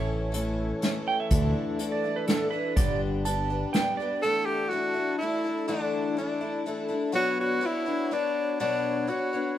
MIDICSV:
0, 0, Header, 1, 7, 480
1, 0, Start_track
1, 0, Key_signature, 2, "major"
1, 0, Tempo, 485437
1, 1299, Time_signature, 3, 2, 24, 8
1, 9473, End_track
2, 0, Start_track
2, 0, Title_t, "Electric slide guitar"
2, 0, Program_c, 0, 29
2, 1064, Note_on_c, 0, 79, 91
2, 1178, Note_off_c, 0, 79, 0
2, 1186, Note_on_c, 0, 76, 101
2, 1882, Note_off_c, 0, 76, 0
2, 1898, Note_on_c, 0, 74, 91
2, 2132, Note_off_c, 0, 74, 0
2, 2137, Note_on_c, 0, 71, 86
2, 2248, Note_off_c, 0, 71, 0
2, 2252, Note_on_c, 0, 69, 88
2, 2473, Note_off_c, 0, 69, 0
2, 2477, Note_on_c, 0, 71, 84
2, 2721, Note_off_c, 0, 71, 0
2, 2732, Note_on_c, 0, 74, 104
2, 2969, Note_off_c, 0, 74, 0
2, 3216, Note_on_c, 0, 81, 90
2, 3684, Note_off_c, 0, 81, 0
2, 3688, Note_on_c, 0, 79, 105
2, 3927, Note_off_c, 0, 79, 0
2, 3927, Note_on_c, 0, 74, 100
2, 4167, Note_off_c, 0, 74, 0
2, 9473, End_track
3, 0, Start_track
3, 0, Title_t, "Harmonium"
3, 0, Program_c, 1, 20
3, 0, Note_on_c, 1, 52, 76
3, 0, Note_on_c, 1, 61, 73
3, 0, Note_on_c, 1, 69, 71
3, 0, Note_on_c, 1, 73, 89
3, 1283, Note_off_c, 1, 73, 0
3, 1286, Note_off_c, 1, 61, 0
3, 1297, Note_on_c, 1, 74, 86
3, 1307, Note_on_c, 1, 62, 75
3, 2699, Note_off_c, 1, 69, 0
3, 2704, Note_off_c, 1, 52, 0
3, 2743, Note_on_c, 1, 71, 74
3, 2747, Note_on_c, 1, 55, 79
3, 4151, Note_off_c, 1, 74, 0
3, 4156, Note_off_c, 1, 62, 0
3, 4168, Note_off_c, 1, 71, 0
3, 4170, Note_off_c, 1, 55, 0
3, 4195, Note_on_c, 1, 81, 88
3, 4198, Note_on_c, 1, 64, 84
3, 4199, Note_on_c, 1, 62, 70
3, 4205, Note_on_c, 1, 69, 73
3, 7037, Note_off_c, 1, 81, 0
3, 7039, Note_off_c, 1, 64, 0
3, 7042, Note_off_c, 1, 69, 0
3, 7053, Note_on_c, 1, 83, 89
3, 7055, Note_on_c, 1, 73, 76
3, 7056, Note_on_c, 1, 66, 82
3, 9473, Note_off_c, 1, 62, 0
3, 9473, Note_off_c, 1, 66, 0
3, 9473, Note_off_c, 1, 73, 0
3, 9473, Note_off_c, 1, 83, 0
3, 9473, End_track
4, 0, Start_track
4, 0, Title_t, "Tenor saxophone"
4, 0, Program_c, 2, 66
4, 4175, Note_on_c, 2, 69, 109
4, 4405, Note_on_c, 2, 67, 97
4, 4420, Note_off_c, 2, 69, 0
4, 4635, Note_on_c, 2, 66, 106
4, 4650, Note_off_c, 2, 67, 0
4, 5118, Note_off_c, 2, 66, 0
4, 5124, Note_on_c, 2, 64, 95
4, 5578, Note_off_c, 2, 64, 0
4, 5615, Note_on_c, 2, 62, 91
4, 6063, Note_off_c, 2, 62, 0
4, 6107, Note_on_c, 2, 62, 81
4, 6550, Note_off_c, 2, 62, 0
4, 7073, Note_on_c, 2, 66, 119
4, 7289, Note_off_c, 2, 66, 0
4, 7326, Note_on_c, 2, 66, 105
4, 7569, Note_on_c, 2, 64, 107
4, 7584, Note_off_c, 2, 66, 0
4, 8043, Note_on_c, 2, 62, 94
4, 8058, Note_off_c, 2, 64, 0
4, 8500, Note_off_c, 2, 62, 0
4, 8506, Note_on_c, 2, 62, 94
4, 8985, Note_on_c, 2, 66, 100
4, 9000, Note_off_c, 2, 62, 0
4, 9460, Note_off_c, 2, 66, 0
4, 9473, End_track
5, 0, Start_track
5, 0, Title_t, "Twelve-string acoustic guitar"
5, 0, Program_c, 3, 25
5, 0, Note_on_c, 3, 45, 72
5, 0, Note_on_c, 3, 52, 78
5, 0, Note_on_c, 3, 57, 72
5, 0, Note_on_c, 3, 61, 88
5, 0, Note_on_c, 3, 64, 87
5, 312, Note_off_c, 3, 52, 0
5, 316, Note_on_c, 3, 52, 68
5, 325, Note_off_c, 3, 61, 0
5, 330, Note_off_c, 3, 57, 0
5, 332, Note_off_c, 3, 45, 0
5, 334, Note_on_c, 3, 57, 74
5, 337, Note_on_c, 3, 61, 74
5, 338, Note_off_c, 3, 64, 0
5, 342, Note_on_c, 3, 64, 76
5, 805, Note_off_c, 3, 52, 0
5, 808, Note_off_c, 3, 57, 0
5, 817, Note_on_c, 3, 52, 68
5, 818, Note_off_c, 3, 61, 0
5, 820, Note_on_c, 3, 57, 67
5, 821, Note_off_c, 3, 64, 0
5, 830, Note_on_c, 3, 61, 77
5, 835, Note_on_c, 3, 64, 75
5, 1281, Note_off_c, 3, 57, 0
5, 1288, Note_off_c, 3, 64, 0
5, 1289, Note_off_c, 3, 52, 0
5, 1293, Note_on_c, 3, 50, 77
5, 1293, Note_on_c, 3, 57, 79
5, 1300, Note_on_c, 3, 64, 81
5, 1301, Note_off_c, 3, 61, 0
5, 1305, Note_on_c, 3, 62, 81
5, 1756, Note_off_c, 3, 50, 0
5, 1767, Note_off_c, 3, 57, 0
5, 1768, Note_on_c, 3, 50, 61
5, 1779, Note_on_c, 3, 57, 63
5, 1780, Note_off_c, 3, 64, 0
5, 1781, Note_off_c, 3, 62, 0
5, 1785, Note_on_c, 3, 62, 72
5, 1796, Note_on_c, 3, 64, 71
5, 2007, Note_off_c, 3, 64, 0
5, 2014, Note_off_c, 3, 50, 0
5, 2019, Note_on_c, 3, 64, 48
5, 2020, Note_off_c, 3, 57, 0
5, 2020, Note_off_c, 3, 62, 0
5, 2031, Note_on_c, 3, 62, 41
5, 2040, Note_on_c, 3, 57, 42
5, 2257, Note_off_c, 3, 57, 0
5, 2260, Note_off_c, 3, 64, 0
5, 2265, Note_on_c, 3, 50, 62
5, 2266, Note_off_c, 3, 62, 0
5, 2269, Note_on_c, 3, 57, 66
5, 2280, Note_on_c, 3, 62, 72
5, 2284, Note_on_c, 3, 64, 68
5, 2481, Note_off_c, 3, 64, 0
5, 2493, Note_on_c, 3, 64, 51
5, 2494, Note_off_c, 3, 62, 0
5, 2503, Note_off_c, 3, 50, 0
5, 2505, Note_off_c, 3, 57, 0
5, 2506, Note_on_c, 3, 62, 47
5, 2515, Note_on_c, 3, 57, 40
5, 2737, Note_off_c, 3, 62, 0
5, 2737, Note_off_c, 3, 64, 0
5, 2737, Note_on_c, 3, 43, 82
5, 2740, Note_off_c, 3, 57, 0
5, 2744, Note_on_c, 3, 59, 85
5, 2747, Note_on_c, 3, 50, 85
5, 2749, Note_on_c, 3, 55, 86
5, 2749, Note_on_c, 3, 62, 81
5, 2757, Note_on_c, 3, 67, 87
5, 3201, Note_off_c, 3, 55, 0
5, 3213, Note_on_c, 3, 55, 61
5, 3214, Note_off_c, 3, 59, 0
5, 3215, Note_off_c, 3, 62, 0
5, 3219, Note_off_c, 3, 43, 0
5, 3224, Note_off_c, 3, 50, 0
5, 3226, Note_off_c, 3, 67, 0
5, 3226, Note_on_c, 3, 59, 68
5, 3227, Note_on_c, 3, 62, 68
5, 3238, Note_on_c, 3, 67, 75
5, 3447, Note_off_c, 3, 67, 0
5, 3452, Note_off_c, 3, 62, 0
5, 3457, Note_off_c, 3, 55, 0
5, 3459, Note_on_c, 3, 67, 50
5, 3464, Note_off_c, 3, 59, 0
5, 3464, Note_on_c, 3, 62, 48
5, 3474, Note_on_c, 3, 59, 44
5, 3483, Note_on_c, 3, 55, 42
5, 3686, Note_off_c, 3, 55, 0
5, 3694, Note_off_c, 3, 59, 0
5, 3698, Note_on_c, 3, 55, 59
5, 3700, Note_off_c, 3, 62, 0
5, 3700, Note_off_c, 3, 67, 0
5, 3706, Note_on_c, 3, 59, 61
5, 3712, Note_on_c, 3, 62, 64
5, 3719, Note_on_c, 3, 67, 70
5, 3940, Note_off_c, 3, 55, 0
5, 3943, Note_off_c, 3, 59, 0
5, 3943, Note_off_c, 3, 67, 0
5, 3947, Note_off_c, 3, 62, 0
5, 3955, Note_on_c, 3, 67, 50
5, 3965, Note_on_c, 3, 62, 47
5, 3972, Note_on_c, 3, 59, 47
5, 3976, Note_on_c, 3, 55, 39
5, 4182, Note_off_c, 3, 55, 0
5, 4184, Note_off_c, 3, 62, 0
5, 4184, Note_on_c, 3, 50, 82
5, 4186, Note_on_c, 3, 52, 82
5, 4188, Note_off_c, 3, 67, 0
5, 4192, Note_off_c, 3, 59, 0
5, 4196, Note_on_c, 3, 57, 75
5, 4196, Note_on_c, 3, 62, 79
5, 4196, Note_on_c, 3, 64, 88
5, 4644, Note_off_c, 3, 52, 0
5, 4649, Note_off_c, 3, 57, 0
5, 4655, Note_on_c, 3, 52, 63
5, 4661, Note_on_c, 3, 57, 61
5, 4662, Note_off_c, 3, 64, 0
5, 4670, Note_off_c, 3, 62, 0
5, 4674, Note_on_c, 3, 62, 68
5, 4674, Note_on_c, 3, 64, 67
5, 4685, Note_off_c, 3, 50, 0
5, 4874, Note_off_c, 3, 64, 0
5, 4886, Note_on_c, 3, 64, 52
5, 4890, Note_off_c, 3, 62, 0
5, 4898, Note_off_c, 3, 52, 0
5, 4901, Note_off_c, 3, 57, 0
5, 4902, Note_on_c, 3, 62, 46
5, 4911, Note_on_c, 3, 57, 38
5, 5133, Note_off_c, 3, 64, 0
5, 5141, Note_off_c, 3, 62, 0
5, 5146, Note_off_c, 3, 57, 0
5, 5150, Note_on_c, 3, 52, 60
5, 5162, Note_on_c, 3, 57, 69
5, 5168, Note_on_c, 3, 62, 66
5, 5175, Note_on_c, 3, 64, 73
5, 5372, Note_off_c, 3, 64, 0
5, 5384, Note_on_c, 3, 64, 49
5, 5385, Note_off_c, 3, 52, 0
5, 5385, Note_off_c, 3, 62, 0
5, 5391, Note_off_c, 3, 57, 0
5, 5397, Note_on_c, 3, 62, 42
5, 5411, Note_on_c, 3, 57, 43
5, 5608, Note_off_c, 3, 57, 0
5, 5613, Note_off_c, 3, 62, 0
5, 5614, Note_on_c, 3, 50, 85
5, 5619, Note_off_c, 3, 64, 0
5, 5620, Note_on_c, 3, 57, 86
5, 5622, Note_on_c, 3, 52, 88
5, 5625, Note_on_c, 3, 62, 87
5, 5630, Note_on_c, 3, 64, 91
5, 6087, Note_off_c, 3, 52, 0
5, 6097, Note_off_c, 3, 50, 0
5, 6099, Note_on_c, 3, 52, 61
5, 6100, Note_off_c, 3, 57, 0
5, 6105, Note_off_c, 3, 64, 0
5, 6114, Note_on_c, 3, 57, 68
5, 6115, Note_off_c, 3, 62, 0
5, 6119, Note_on_c, 3, 62, 66
5, 6125, Note_on_c, 3, 64, 77
5, 6324, Note_off_c, 3, 64, 0
5, 6336, Note_off_c, 3, 62, 0
5, 6336, Note_on_c, 3, 64, 54
5, 6339, Note_off_c, 3, 52, 0
5, 6347, Note_off_c, 3, 57, 0
5, 6348, Note_on_c, 3, 62, 46
5, 6369, Note_on_c, 3, 57, 43
5, 6578, Note_off_c, 3, 57, 0
5, 6578, Note_off_c, 3, 64, 0
5, 6584, Note_off_c, 3, 62, 0
5, 6584, Note_on_c, 3, 52, 63
5, 6590, Note_on_c, 3, 57, 68
5, 6598, Note_on_c, 3, 62, 72
5, 6609, Note_on_c, 3, 64, 74
5, 6797, Note_off_c, 3, 64, 0
5, 6807, Note_off_c, 3, 62, 0
5, 6809, Note_on_c, 3, 64, 57
5, 6819, Note_on_c, 3, 62, 50
5, 6822, Note_off_c, 3, 52, 0
5, 6825, Note_off_c, 3, 57, 0
5, 6835, Note_on_c, 3, 57, 51
5, 7043, Note_on_c, 3, 47, 80
5, 7044, Note_off_c, 3, 62, 0
5, 7047, Note_on_c, 3, 54, 83
5, 7052, Note_off_c, 3, 57, 0
5, 7053, Note_on_c, 3, 59, 84
5, 7054, Note_off_c, 3, 64, 0
5, 7055, Note_on_c, 3, 66, 88
5, 7056, Note_on_c, 3, 62, 87
5, 7061, Note_on_c, 3, 73, 96
5, 7513, Note_off_c, 3, 59, 0
5, 7525, Note_on_c, 3, 59, 67
5, 7530, Note_off_c, 3, 47, 0
5, 7531, Note_off_c, 3, 66, 0
5, 7532, Note_off_c, 3, 54, 0
5, 7533, Note_off_c, 3, 62, 0
5, 7536, Note_off_c, 3, 73, 0
5, 7537, Note_on_c, 3, 62, 66
5, 7542, Note_on_c, 3, 66, 65
5, 7548, Note_on_c, 3, 73, 70
5, 7761, Note_off_c, 3, 73, 0
5, 7762, Note_off_c, 3, 66, 0
5, 7771, Note_off_c, 3, 59, 0
5, 7773, Note_off_c, 3, 62, 0
5, 7773, Note_on_c, 3, 73, 50
5, 7774, Note_on_c, 3, 66, 47
5, 7785, Note_on_c, 3, 62, 49
5, 7790, Note_on_c, 3, 59, 41
5, 8010, Note_off_c, 3, 59, 0
5, 8015, Note_off_c, 3, 73, 0
5, 8016, Note_off_c, 3, 62, 0
5, 8016, Note_off_c, 3, 66, 0
5, 8022, Note_on_c, 3, 59, 62
5, 8027, Note_on_c, 3, 62, 67
5, 8036, Note_on_c, 3, 66, 73
5, 8040, Note_on_c, 3, 73, 67
5, 8493, Note_off_c, 3, 59, 0
5, 8501, Note_on_c, 3, 47, 80
5, 8502, Note_off_c, 3, 66, 0
5, 8503, Note_off_c, 3, 73, 0
5, 8505, Note_on_c, 3, 59, 88
5, 8506, Note_on_c, 3, 54, 82
5, 8507, Note_off_c, 3, 62, 0
5, 8511, Note_on_c, 3, 62, 80
5, 8514, Note_on_c, 3, 66, 82
5, 8515, Note_on_c, 3, 73, 84
5, 8960, Note_off_c, 3, 59, 0
5, 8969, Note_off_c, 3, 66, 0
5, 8972, Note_on_c, 3, 59, 61
5, 8978, Note_off_c, 3, 47, 0
5, 8978, Note_off_c, 3, 62, 0
5, 8981, Note_off_c, 3, 54, 0
5, 8981, Note_on_c, 3, 66, 64
5, 8982, Note_on_c, 3, 62, 63
5, 8985, Note_off_c, 3, 73, 0
5, 8997, Note_on_c, 3, 73, 66
5, 9212, Note_off_c, 3, 73, 0
5, 9214, Note_off_c, 3, 59, 0
5, 9215, Note_off_c, 3, 66, 0
5, 9219, Note_off_c, 3, 62, 0
5, 9224, Note_on_c, 3, 73, 47
5, 9227, Note_on_c, 3, 66, 45
5, 9237, Note_on_c, 3, 62, 45
5, 9243, Note_on_c, 3, 59, 44
5, 9454, Note_off_c, 3, 59, 0
5, 9460, Note_off_c, 3, 73, 0
5, 9461, Note_off_c, 3, 66, 0
5, 9466, Note_off_c, 3, 62, 0
5, 9473, End_track
6, 0, Start_track
6, 0, Title_t, "Fingered electric bass"
6, 0, Program_c, 4, 33
6, 0, Note_on_c, 4, 33, 97
6, 704, Note_off_c, 4, 33, 0
6, 1295, Note_on_c, 4, 38, 98
6, 1509, Note_off_c, 4, 38, 0
6, 2737, Note_on_c, 4, 31, 104
6, 3587, Note_off_c, 4, 31, 0
6, 9473, End_track
7, 0, Start_track
7, 0, Title_t, "Drums"
7, 335, Note_on_c, 9, 42, 70
7, 434, Note_off_c, 9, 42, 0
7, 813, Note_on_c, 9, 42, 63
7, 822, Note_on_c, 9, 38, 85
7, 912, Note_off_c, 9, 42, 0
7, 921, Note_off_c, 9, 38, 0
7, 1292, Note_on_c, 9, 42, 72
7, 1296, Note_on_c, 9, 36, 113
7, 1391, Note_off_c, 9, 42, 0
7, 1395, Note_off_c, 9, 36, 0
7, 1772, Note_on_c, 9, 42, 67
7, 1871, Note_off_c, 9, 42, 0
7, 2250, Note_on_c, 9, 42, 71
7, 2259, Note_on_c, 9, 38, 84
7, 2349, Note_off_c, 9, 42, 0
7, 2358, Note_off_c, 9, 38, 0
7, 2736, Note_on_c, 9, 42, 82
7, 2737, Note_on_c, 9, 36, 119
7, 2834, Note_off_c, 9, 42, 0
7, 2836, Note_off_c, 9, 36, 0
7, 3217, Note_on_c, 9, 42, 70
7, 3316, Note_off_c, 9, 42, 0
7, 3695, Note_on_c, 9, 42, 71
7, 3703, Note_on_c, 9, 38, 87
7, 3793, Note_off_c, 9, 42, 0
7, 3802, Note_off_c, 9, 38, 0
7, 9473, End_track
0, 0, End_of_file